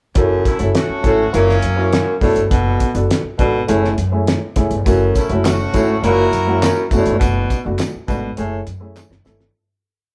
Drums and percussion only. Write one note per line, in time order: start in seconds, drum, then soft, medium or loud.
0.15 kick loud
0.15 closed hi-hat medium
0.45 kick medium
0.45 closed hi-hat medium
0.59 closed hi-hat soft
0.75 snare loud
0.75 closed hi-hat medium
1.04 kick medium
1.04 snare soft
1.04 closed hi-hat medium
1.34 closed hi-hat medium
1.49 snare soft
1.62 closed hi-hat medium
1.93 snare loud
1.93 closed hi-hat medium
2.21 kick medium
2.21 snare soft
2.21 open hi-hat soft
2.36 closed hi-hat medium
2.51 kick loud
2.51 closed hi-hat medium
2.80 kick medium
2.80 closed hi-hat medium
2.95 closed hi-hat soft
3.11 snare medium
3.11 closed hi-hat medium
3.39 kick medium
3.39 closed hi-hat medium
3.68 closed hi-hat medium
3.85 snare soft
3.98 closed hi-hat medium
4.27 snare loud
4.27 closed hi-hat medium
4.56 kick medium
4.56 snare soft
4.56 closed hi-hat medium
4.71 closed hi-hat soft
4.86 kick loud
4.86 closed hi-hat medium
4.86 tambourine medium
5.15 kick medium
5.15 closed hi-hat medium
5.15 tambourine medium
5.30 closed hi-hat medium
5.45 snare medium
5.45 clap medium
5.45 closed hi-hat medium
5.45 tambourine medium
5.74 kick medium
5.74 snare soft
5.74 closed hi-hat medium
5.74 tambourine medium
6.04 closed hi-hat medium
6.33 closed hi-hat medium
6.33 tambourine soft
6.62 snare loud
6.62 clap medium
6.62 closed hi-hat medium
6.62 tambourine medium
6.91 kick medium
6.91 closed hi-hat medium
6.91 tambourine medium
7.06 closed hi-hat medium
7.21 kick loud
7.21 closed hi-hat medium
7.21 tambourine medium
7.50 kick medium
7.50 closed hi-hat medium
7.50 tambourine medium
7.79 snare loud
7.79 clap medium
7.79 closed hi-hat medium
7.79 tambourine medium
8.08 kick medium
8.08 closed hi-hat medium
8.08 tambourine medium
8.37 closed hi-hat medium
8.37 tambourine soft
8.67 closed hi-hat medium
8.67 tambourine soft
8.97 snare medium
8.97 clap medium
8.97 tambourine medium
9.12 snare medium
9.25 snare medium
9.25 tambourine medium
9.41 snare medium